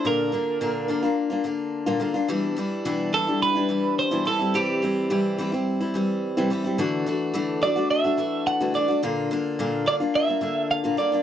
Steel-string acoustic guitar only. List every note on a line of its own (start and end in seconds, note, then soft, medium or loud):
0.05 0.33 A#2 medium
0.05 0.31 D3 medium
0.05 0.32 A#3 medium
0.05 0.33 D4 medium
0.05 0.33 F4 medium
0.32 0.60 D3 medium
0.32 0.60 A#3 medium
0.32 0.60 D4 medium
0.32 0.61 F4 medium
0.61 0.89 A#2 medium
0.61 0.87 D3 medium
0.61 0.88 A#3 medium
0.61 0.89 D4 medium
0.61 0.89 F4 medium
0.88 1.03 D3 medium
0.88 1.03 A#3 medium
0.88 1.02 D4 medium
0.88 1.01 F4 medium
1.02 1.31 A#3 medium
1.02 1.30 D4 medium
1.02 1.29 F4 medium
1.30 1.43 A#3 medium
1.30 1.44 D4 medium
1.30 1.45 F4 medium
1.44 1.86 D3 medium
1.44 1.86 A#3 medium
1.44 1.86 D4 medium
1.44 1.85 F4 medium
1.86 2.02 A#2 medium
1.86 1.98 D3 medium
1.86 1.99 A#3 medium
1.86 2.00 D4 medium
1.86 2.01 F4 medium
2.00 2.15 D3 medium
2.00 2.15 A#3 medium
2.00 2.14 D4 medium
2.00 2.13 F4 medium
2.14 2.29 A#3 soft
2.14 2.28 D4 medium
2.14 2.29 F4 medium
2.28 2.57 B2 medium
2.28 2.55 E3 medium
2.28 2.57 G3 medium
2.28 2.57 D4 loud
2.28 2.58 E4 medium
2.56 2.84 E3 medium
2.56 2.85 G3 medium
2.56 2.85 D4 medium
2.56 2.86 E4 medium
2.85 3.13 B2 medium
2.85 3.11 E3 medium
2.85 3.13 G3 medium
2.85 3.13 D4 medium
2.85 3.14 E4 medium
3.13 3.27 E3 medium
3.13 3.28 G3 medium
3.13 3.27 D4 medium
3.13 3.26 E4 medium
3.27 3.56 G3 medium
3.27 3.55 D4 medium
3.27 3.54 E4 medium
3.55 3.68 G3 soft
3.55 3.69 D4 soft
3.55 3.69 E4 medium
3.69 4.11 E3 medium
3.69 4.11 G3 medium
3.69 4.10 D4 medium
3.69 4.10 E4 medium
4.11 4.26 B2 medium
4.11 4.24 E3 medium
4.11 4.25 G3 medium
4.11 4.26 D4 medium
4.11 4.26 E4 medium
4.25 4.40 E3 medium
4.25 4.40 G3 medium
4.25 4.40 C4 medium
4.25 4.38 E4 medium
4.39 4.54 G3 soft
4.39 4.54 C4 medium
4.39 4.54 E4 medium
4.54 4.82 C3 medium
4.54 4.81 E3 medium
4.54 4.82 G3 medium
4.54 4.82 C4 medium
4.54 4.83 E4 medium
4.82 5.09 E3 medium
4.82 5.09 G3 medium
4.82 5.10 C4 medium
4.82 5.10 E4 medium
5.10 5.38 C3 medium
5.10 5.37 E3 medium
5.10 5.38 G3 medium
5.10 5.38 C4 medium
5.10 5.39 E4 medium
5.38 5.52 E3 medium
5.38 5.53 G3 medium
5.38 5.52 C4 medium
5.38 5.51 E4 medium
5.52 5.81 G3 medium
5.52 5.80 C4 medium
5.52 5.79 E4 medium
5.80 5.94 G3 soft
5.80 5.95 C4 soft
5.80 5.94 E4 medium
5.94 6.36 E3 medium
5.94 6.37 G3 medium
5.94 6.36 C4 medium
5.94 6.36 E4 medium
6.37 6.51 C3 medium
6.37 6.49 E3 medium
6.37 6.50 G3 medium
6.37 6.51 C4 medium
6.37 6.51 E4 medium
6.50 6.64 E3 medium
6.50 6.65 G3 medium
6.50 6.65 C4 medium
6.50 6.63 E4 medium
6.64 6.79 G3 soft
6.64 6.79 C4 medium
6.64 6.78 E4 medium
6.78 7.06 D3 medium
6.78 7.05 E3 medium
6.78 7.06 A3 loud
6.78 7.07 D4 medium
6.78 7.07 F#4 loud
7.06 7.33 E3 medium
7.06 7.33 A3 medium
7.06 7.34 D4 medium
7.06 7.34 F#4 medium
7.34 7.62 D3 medium
7.34 7.60 E3 medium
7.34 7.61 A3 medium
7.34 7.62 D4 loud
7.34 7.63 F#4 medium
7.62 7.76 E3 medium
7.62 7.76 A3 medium
7.62 7.76 D4 medium
7.62 7.75 F#4 medium
7.76 8.05 A3 soft
7.76 8.04 D4 soft
7.76 8.03 F#4 medium
8.04 8.17 A3 soft
8.04 8.18 D4 medium
8.04 8.18 F#4 medium
8.17 8.60 E3 medium
8.17 8.60 A3 medium
8.17 8.59 D4 medium
8.17 8.59 F#4 medium
8.60 8.75 D3 medium
8.60 8.73 E3 medium
8.60 8.74 A3 medium
8.60 8.75 D4 medium
8.60 8.74 F#4 medium
8.74 8.88 E3 medium
8.74 8.89 A3 medium
8.74 8.88 D4 medium
8.74 8.87 F#4 medium
8.88 9.03 A3 soft
8.88 9.02 D4 soft
8.88 9.02 F#4 medium
9.03 9.31 A#2 medium
9.03 9.30 D3 medium
9.03 9.30 A#3 medium
9.03 9.31 D4 medium
9.03 9.31 F4 medium
9.31 9.58 D3 medium
9.31 9.59 A#3 medium
9.31 9.59 D4 medium
9.31 9.59 F4 medium
9.59 9.87 A#2 medium
9.59 9.85 D3 medium
9.59 9.86 A#3 medium
9.59 9.87 D4 medium
9.59 9.88 F4 medium
9.86 10.00 D3 medium
9.86 10.01 A#3 medium
9.86 10.00 D4 medium
9.86 9.99 F4 medium
10.00 10.29 A#3 soft
10.00 10.28 D4 medium
10.00 10.26 F4 medium
10.28 10.41 A#3 soft
10.28 10.42 D4 soft
10.28 10.42 F4 medium
10.41 10.84 D3 medium
10.41 10.84 A#3 medium
10.41 10.83 D4 medium
10.41 10.83 F4 medium
10.84 10.99 A#2 medium
10.84 10.96 D3 medium
10.84 10.97 A#3 medium
10.84 10.98 D4 medium
10.84 10.98 F4 medium
10.97 11.12 D3 medium
10.97 11.13 A#3 medium
10.97 11.12 D4 medium
10.97 11.11 F4 medium
11.12 11.23 A#3 soft
11.12 11.23 D4 medium
11.12 11.23 F4 medium